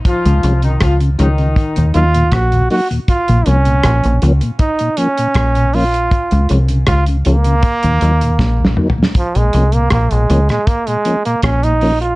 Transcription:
<<
  \new Staff \with { instrumentName = "Trombone" } { \time 4/4 \key bes \minor \tempo 4 = 79 r2 r8 f'8 ges'8 ges'8 | f'8 des'4 r8 ees'8 des'4 f'8~ | f'8 r8 f'8 bes2 r8 | f16 aes8 bes16 bes16 aes8 aes16 bes16 aes8 bes16 des'16 ees'8 f'16 | }
  \new Staff \with { instrumentName = "Horn section" } { \time 4/4 \key bes \minor <f f'>8. <ees ees'>16 <f f'>16 r16 <ees ees'>4 r4. | r1 | r1 | r1 | }
  \new Staff \with { instrumentName = "Tonewheel organ" } { \clef bass \time 4/4 \key bes \minor << { r8 <f aes des'>8 r8 <f aes des'>8 r8 <ges bes ees'>8 r8 <ges bes ees'>8 | r8 <f bes des'>8 r8 <f bes des'>8 r8 <f bes des'>8 r8 <f bes des'>8 | r8 <f aes des'>8 r8 <f aes des'>8 r8 <ges bes ees'>8 r8 <ges bes ees'>8 | r8 <f bes des'>8 r8 <f bes des'>8 r8 <f bes des'>8 r8 <f bes des'>8 | } \\ { r16 des16 r16 des16 r16 des16 r16 des16 r16 <ees, bes,>16 r16 <ees, bes,>16 r16 <ees, bes,>16 r16 <ees, bes,>16 | r16 bes,16 r16 bes,16 r16 bes,16 r16 bes,16 r16 bes,16 r16 bes,16 r16 bes,16 r8 | r16 des16 r16 des16 r16 des16 r16 des16 r16 <ees, bes,>16 r16 <ees, bes,>16 r16 <ees, bes,>16 r16 <ees, bes,>16 | r16 bes,16 r16 bes,16 r16 bes,16 r16 bes,16 r16 bes,16 r16 bes,16 r16 bes,16 r8 | } >> }
  \new Staff \with { instrumentName = "Fingered electric bass" } { \clef bass \time 4/4 \key bes \minor r16 des,16 c,8 des,8 des,8 r16 ees,16 ees,8 bes,,8 r8 | r16 bes,,16 c,8 bes,,16 bes,,16 des,16 r4 r16 bes,,4 | r16 des,16 c,8 des,8 des,8 r16 ees,16 ees,8 bes,,8 r8 | r16 bes,,16 c,8 bes,,16 bes,,16 des,16 r4 r16 bes,,4 | }
  \new DrumStaff \with { instrumentName = "Drums" } \drummode { \time 4/4 <hh bd>16 hh16 hh16 hh16 <hh bd ss>16 hh16 hh16 hh16 <hh bd>16 hh16 hh16 hh16 <hh bd ss>16 hh16 hho16 hh16 | <hh bd>16 hh16 hh16 hh16 <hh bd ss>16 hh16 hh16 hh16 <hh bd>16 hh16 hh16 hh16 <hh bd ss>16 hh16 hho16 hh16 | <hh bd>16 hh16 hh16 hh16 <hh bd ss>16 hh16 hh16 hh16 <hh bd>16 hh16 hh16 hh16 \tuplet 3/2 { <bd sn>16 r16 sn16 toml16 tomfh16 sn16 } | <hh bd>16 hh16 hh16 hh16 <hh bd ss>16 hh16 hh16 <hh ss>16 <hh bd>16 hh16 hh16 hh16 <hh bd ss>16 hh16 hho16 hh16 | }
>>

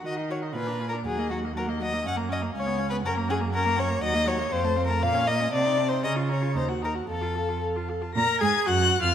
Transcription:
<<
  \new Staff \with { instrumentName = "Violin" } { \time 2/4 \key ees \minor \tempo 4 = 119 ges''16 ees''16 ges''16 ees''16 aes''16 bes''16 aes''16 bes''16 | ges''16 ees''16 ges''16 ees''16 ges''16 ees''16 ges''16 ees''16 | ges''16 bes''16 ges''16 bes''16 f''16 aes''16 f''16 aes''16 | ges''16 bes''16 ges''16 bes''16 ges''16 bes''16 ges''16 bes''16 |
\key bes \minor ges''16 ees''16 ges''16 ees''16 f''16 a''16 f''16 a''16 | f''16 des''16 f''16 des''16 a''16 c'''16 a''16 c'''16 | bes''16 des'''16 bes''16 des'''16 bes''16 ges''16 bes''16 ges''16 | f''16 a''16 f''16 a''16 f''16 a''16 f''16 a''16 |
bes'''8 aes'''8 \tuplet 3/2 { ges'''4 f'''8 } | }
  \new Staff \with { instrumentName = "Violin" } { \time 2/4 \key ees \minor ees''8 des''8 \tuplet 3/2 { ces''4 bes'8 } | aes'8 ges'8 bes'8 ees''8 | ges''8 ees''8 \tuplet 3/2 { des''4 ces''8 } | bes'8 aes'8 bes'8 des''8 |
\key bes \minor ees''8 des''8 \tuplet 3/2 { c''4 bes'8 } | f''8 ees''8 \tuplet 3/2 { d''4 c''8 } | ees''8 des''8 c''8 bes'8 | a'4 r4 |
bes''8 aes''8 \tuplet 3/2 { ges''4 f''8 } | }
  \new Staff \with { instrumentName = "Viola" } { \time 2/4 \key ees \minor ges'16 ees'16 ges'16 ees'16 f'16 d'16 f'16 d'16 | ges16 bes16 ges16 bes16 ges16 bes16 ges16 bes16 | des'16 bes16 des'16 bes16 des'16 ces'16 des'16 ces'16 | des'16 bes16 des'16 bes16 des'16 bes16 des'16 bes16 |
\key bes \minor ges16 bes16 ges16 bes16 c'16 a16 c'16 a16 | bes16 des'16 bes16 des'16 c'16 ees'16 c'16 ees'16 | des'16 f'16 des'16 f'16 ees'16 ges'16 ees'16 ges'16 | a'16 f'16 a'16 f'16 a'16 f'16 a'16 f'16 |
bes'8 aes'8 \tuplet 3/2 { ges'4 f'8 } | }
  \new Staff \with { instrumentName = "Cello" } { \clef bass \time 2/4 \key ees \minor ees4 bes,4 | ees,2 | ges,4 des,4 | ges,2 |
\key bes \minor ees,4 f,4 | bes,4 c4 | des4 ees,4 | f,4. r8 |
bes,8 aes,8 \tuplet 3/2 { ges,4 f,8 } | }
>>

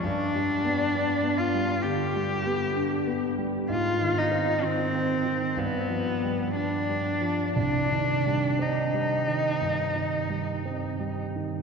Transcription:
<<
  \new Staff \with { instrumentName = "Cello" } { \time 4/4 \key c \minor \tempo 4 = 63 d'4. f'8 g'4. r8 | f'8 ees'8 c'4 b4 d'4 | d'4 ees'2~ ees'8 r8 | }
  \new Staff \with { instrumentName = "Grand piano" } { \clef bass \time 4/4 \key c \minor \tuplet 3/2 { g,8 g8 b8 d'8 b8 g8 d8 g8 b8 d'8 b8 g8 } | \tuplet 3/2 { aes,8 ees8 c'8 ees8 c'8 ees8 g,8 f8 g8 d'8 g8 f8 } | \tuplet 3/2 { c,8 ees8 g8 c'8 g8 ees8 g,8 ees8 g8 c'8 g8 ees8 } | }
>>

